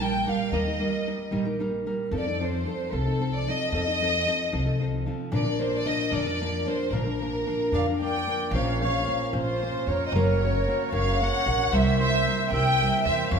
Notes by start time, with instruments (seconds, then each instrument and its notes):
Already playing: upright bass A#1
0.00 nylon-string guitar G3 A#3 D#4 A#4, violin section G5
0.26 nylon-string guitar G3 A#3 D#4 A#4, violin section F5
0.52 upright bass D#2, nylon-string guitar D#3 G3 A#3 D#4 A#4, violin section D#5
0.68 nylon-string guitar A#3 D#4 A#4
0.80 nylon-string guitar G3 A#3 D#4 A#4
1.06 nylon-string guitar G3 A#3 D#4 A#4
1.31 upright bass A#1, nylon-string guitar D#3 G3 A#3 D#4 A#4
1.45 nylon-string guitar A#3 D#4 A#4
1.59 nylon-string guitar G3 A#3 D#4 A#4
1.86 nylon-string guitar G3 A#3 D#4 A#4
2.11 upright bass F2, nylon-string guitar F3 C4 D#4 A4
2.17 violin section D5
2.27 nylon-string guitar C4 D#4 A4
2.40 nylon-string guitar F3 C4 D#4 A4, violin section C5
2.66 nylon-string guitar F3 C4 D#4 A4
2.91 upright bass C2, nylon-string guitar F3 C4 D#4 A4, violin section A4
3.05 nylon-string guitar C4 D#4 A4
3.20 nylon-string guitar F3 C4 D#4 A4
3.35 violin section D5
3.47 nylon-string guitar F3 C4 D#4 A4, violin section D#5
3.72 upright bass F2, nylon-string guitar F3 C4 D#4 A4, violin section D#5
3.87 nylon-string guitar C4 D#4 A4
4.01 nylon-string guitar F3 C4 D#4 A4
4.26 nylon-string guitar F3 C4 D#4 A4
4.52 upright bass C2, nylon-string guitar F3 C4 D#4 A4
4.66 nylon-string guitar C4 D#4 A4
4.80 nylon-string guitar F3 C4 D#4 A4
5.06 nylon-string guitar F3 C4 D#4 A4
5.32 upright bass A#1, nylon-string guitar A#2 D3 F3 A#3 D4 A#4, violin section D5
5.45 nylon-string guitar F3 A#3 D4 A#4
5.59 nylon-string guitar F3 A#3 D4 A#4, violin section C5
5.76 violin section D5
5.85 nylon-string guitar F3 A#3 D4 A#4, violin section D#5
6.10 upright bass F2, nylon-string guitar A#2 D3 F3 A#3 D4 A#4, violin section D5
6.26 nylon-string guitar F3 A#3 D4 A#4
6.41 nylon-string guitar F3 A#3 D4 A#4
6.65 nylon-string guitar F3 A#3 D4 A#4, violin section C5
6.91 upright bass A#1, nylon-string guitar A#2 D3 F3 A#3 D4 A#4, violin section A#4
7.05 nylon-string guitar F3 A#3 D4 A#4
7.21 nylon-string guitar F3 A#3 D4 A#4
7.46 nylon-string guitar F3 A#3 D4 A#4
7.72 upright bass F2, nylon-string guitar A#2 D3 F3 A#3 D4 A#4, trumpet D5, violin section F5
7.88 nylon-string guitar F3 A#3 D4 A#4
8.00 nylon-string guitar F3 A#3 D4 A#4, trumpet D5, violin section G5
8.27 nylon-string guitar F3 A#3 D4 A#4
8.51 upright bass A#1, nylon-string guitar A#2 F3 A#3 C#4 F4 C5, violin section C#4 A#4 F5, trumpet C#5
8.81 nylon-string guitar A#3 C#4 F4 C5, trumpet C#5, violin section F5
9.08 nylon-string guitar A#3 C#4 F4 C5
9.33 upright bass A#1, nylon-string guitar A#2 F3 A#3 C#4 F4 C5, trumpet F4, violin section C5
9.62 nylon-string guitar A#3 C#4 F4 C5
9.87 upright bass F2, nylon-string guitar A#3 C#4 F4 C5, trumpet A#4, violin section C#5
10.07 trumpet C5, violin section D#5
10.12 upright bass F#1, nylon-string guitar F#3 A#3 C#4 F#4 A#4, violin section F#4 C#5, trumpet A#4
10.43 nylon-string guitar C#4 F#4 A#4
10.68 nylon-string guitar A#3 C#4 F#4 A#4
10.92 upright bass F#1, nylon-string guitar F#3 A#3 C#4 F#4 A#4, trumpet C#5, violin section F5
11.21 nylon-string guitar A#3 C#4 F#4 A#4, trumpet C#5, violin section F#5
11.46 upright bass A#1, nylon-string guitar C#4 F#4 A#4
11.72 upright bass C2, nylon-string guitar C3 G3 A#3 E4 A#4, violin section C4 E5, trumpet C5
12.00 nylon-string guitar A#3 E4 A#4, trumpet C5, violin section E5
12.26 nylon-string guitar G3 A#3 E4 A#4
12.51 upright bass C2, nylon-string guitar C3 G3 A#3 E4 A#4, trumpet E5, violin section G5
12.81 nylon-string guitar G3 A#3 E4 A#4
13.04 upright bass E2, nylon-string guitar A#4, violin section E5
13.08 nylon-string guitar A#3 E4, trumpet C5
13.30 upright bass F2, nylon-string guitar F3 C#4 F4 A#4, violin section C#4 F4 A#4 F5, trumpet C#5